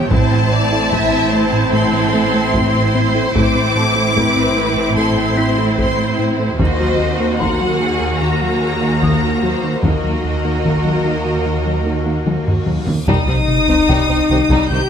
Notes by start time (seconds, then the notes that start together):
Already playing: C#5 G5 E6
0.11 A1 A2 A3 C4 E4 C5 A5, taiko
0.31 A2 C4
0.52 A2 D5
0.72 A3 E4
0.92 A2 A3 E5, taiko
1.12 A2 C4
1.33 A3 C5
1.53 A2
1.73 A2 A3 A4 C6
1.93 A2 C4
2.14 A3 E4
2.34 A3 E4
2.54 A2 A3 C5, taiko
2.75 A2
2.94 A2 C4
3.15 A3 E4
3.35 A1 A2 A3 C4 E4 D6, taiko
3.55 A2 C4
3.76 A2 A4 A5
3.96 A3 E4
4.16 A2 A3 B4, taiko
4.36 A2 C4
4.56 A3
4.77 A2
4.97 A2 A3 A4 C6
5.17 A2 C4
5.37 A3 E4 C5 B6
5.58 A3 E4
5.78 A2 A3 C6, taiko
5.99 A2
6.19 A2 C4
6.39 A3 E4
6.59 D#2 D#3 A#3 F#4 C5 D#5, taiko
6.80 D#2 F#3
7.00 D#2
7.20 D#3 A#3
7.40 D#2 D#3 A#3 A#4 F#5 C6, taiko
7.61 D#2 F#3
7.80 D#3 G#4
8.01 D#2
8.21 D#2 D#3 F#4 A#5
8.42 D#2 F#3
8.61 D#3 A#3 G#4
8.82 D#3 A#3
9.02 D#2 D#3 A#4 D#6, taiko
9.22 D#2
9.43 D#2 F#3 C5
9.63 D#3 A#3
9.83 D#2 D#3 A#3 F#4 A#4 D#5, taiko, reverse cymbal
10.04 D#2 F#3
10.24 D#2
10.45 D#3 A#3
10.65 D#2 D#3, taiko
10.85 D#2 F#3
11.05 D#3
11.25 D#2
11.46 D#2 D#3
11.65 D#2 F#3
11.86 D#3 A#3
12.06 D#3 A#3
12.26 D#2 D#3, taiko high
12.47 D#2, taiko low-mid
12.67 D#2 F#3, taiko mid
12.87 D#3 A#3, taiko low
13.07 C2 C3 G3 D#4 D#6, taiko, sub drop
13.28 C2 C3 G3 D#4 C5
13.48 C3
13.68 C2 C4 D#4 C5
13.88 C2 C3 G3 D#4 G5, taiko
14.09 C2 C4 D#4 C5
14.29 C2 D#3 C4 G4
14.49 C2 C3 G3 D#4, taiko
14.69 C2 D#3 D#4 G4 C5 G6